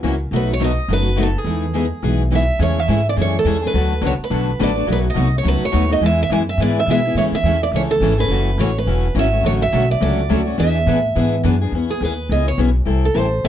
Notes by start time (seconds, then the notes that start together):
0.03 C#2 C#3 E3 F#3 A#3 C#4 E4 F#4 A#4
0.31 B1 B2 F#3 A3 D#4 F#4 B4
0.36 B4
0.53 C#5
0.60 B2 F#3 A3 D#4 F#4 B4
0.64 D#5
0.88 F#1 B2 F#3 A3 D#4 F#4 B4
0.93 B4
1.16 B2 F#3 A3 D#4 F#4 B4
1.23 A4
1.38 G#4
1.44 E2 E3 G#3 B3 D#4 G#4
1.74 E3 G#3 B3 D#4 G#4
2.02 B1 E3 G#3 B3 D#4 G#4
2.31 E3 G#3 B3 D#4 G#4 E5
2.59 E2 C#3 E3 G#3 A3 C#4 E4 G#4 A4 C#5
2.80 E5
2.88 G#2 C#3 E3 G#3 A3 C#4 E4 G#4 A4
3.09 D5
3.16 F#2 C#3 E3 G#3 A3 C#4 E4 G#4 A4
3.21 C#5
3.39 A4
3.44 E2 C#3 E3 G#3 A3 C#4 E4 G#4 A4
3.61 A3 C#4 G#4
3.67 B4
3.74 D2 D3 F#3 A3 B3 D4 F#4 A4 B4
4.01 C#2 D3 F#3 A3 B3 D4 F#4 A4 B4
4.06 C#5
4.18 muted upright bass stroke
4.24 B4
4.30 B1 D3 F#3 A3 B3 D4 F#4 A4 B4
4.59 A1 D3 F#3 A3 B3 D4 F#4 A4 B4 D5
4.75 A3 D4 F#4 B4
4.86 B1 B2 F#3 A3 D#4 F#4 B4
4.92 B4
5.10 D#5
5.14 C2 B2 F#3 A3 D#4 F#4 B4
5.38 C#5
5.43 C#2 B2 F#3 A3 D#4 F#4 B4
5.48 B4
5.62 C#5, muted upright bass stroke
5.72 D#2 B2 F#3 A3 D#4 F#4 B4
5.88 A3 D#4 F#4
5.92 D#5
6.01 E2 E3 G#3 B3 E4 G#4
6.06 E5
6.23 E5
6.30 F#2 E3 G#3 B3 E4 G#4 G#5
6.49 E5
6.58 G#2 E3 G#3 B3 E4 G#4
6.62 D5
6.80 E5
6.86 B2 E3 G#3
6.90 B3 E4 G#4 E5
7.05 B3 E4 G#4
7.14 A2 C#3 E3 G#3 A3 C#4 E4 G#4 A4 C#5
7.32 E5, muted upright bass stroke
7.43 E2 C#3 E3 G#3 A3 C#4 E4 G#4 A4
7.63 D5
7.71 C#2 C#3 G#3 E4 A4
7.75 E3 A3 C#4 G#4 C#5
7.91 A4
8.00 G#1 C#3 E3 G#3 A3 C#4 E4 G#4 A4
8.18 A3 C#4 G#4 B4
8.28 F#1 C#3 E3 F#3 A3 C#4 E4 F#4 A4
8.58 A1 C#3 E3 F#3 A3 C#4 E4 F#4 A4 C#5
8.78 B4
8.86 E1 C#3 E3 F#3 A3 C#4 E4 F#4 A4
9.15 G#1 C#3 E3 F#3 A3 C#4 E4 F#4
9.19 A4 E5
9.32 A3 C#4 F#4
9.43 A1 D3 F#3 A3 C#4 F#4 A4 C#5
9.62 E5
9.72 B1 D3 F#3 A3 C#4 F#4 A4
9.91 D5
10.01 C#2 D3 F#3 A3 C#4 F#4 A4 D5
10.29 D2 D3 F#3 A3 C#4 F#4 A4
10.46 A3 C#4 F#4
10.58 E2 E3 B3 D4 G#4 B4 E5
10.86 A2 E3 B3 D4 G#4 B4
11.15 G#2 E3 B3 D4 G#4 B4
11.43 F#2 E3 B3 D4 G#4 B4
11.61 B3 D4 G#4
11.72 E2 E3 B3 C#4 G#4
11.90 G#4
12.01 D#2 E3 B3 C#4 G#4
12.05 B4
12.29 C#2 E3 B3 C#4 G#4 D#5
12.48 C#5
12.58 B1 E3 B3 C#4 G#4
12.85 C2 C3 E3 G3 C4 E4 A4
13.05 A4
13.14 A1 C3 E3 G3 C4 E4 A4 C5
13.44 B1 C3 E3 G3 C4 E4 A4 E5